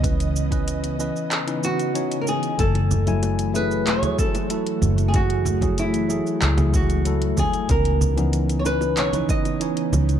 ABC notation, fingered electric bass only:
X:1
M:4/4
L:1/8
Q:1/4=94
K:F#m
V:1 name="Fingered electric bass" clef=bass
C,,3 z4 z | F,,,4 E,,, z2 F,,,- | F,,,3 z C,,3 z | C,,4 B,,, z2 C,, |]